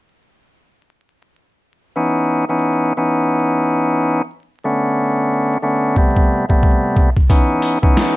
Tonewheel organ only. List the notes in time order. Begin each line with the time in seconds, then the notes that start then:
1.96 E3 B3 C#4 D#4
2.49 E3 B3 C#4 D#4
2.97 E3 B3 C#4 D#4
4.64 D3 A3 B3 C#4
5.62 D3 A3 B3 C#4
5.97 C3 G3 A3 B3
6.49 C3 G3 A3 B3
7.29 E3 B3 C#4 D#4
7.82 E3 B3 C#4 D#4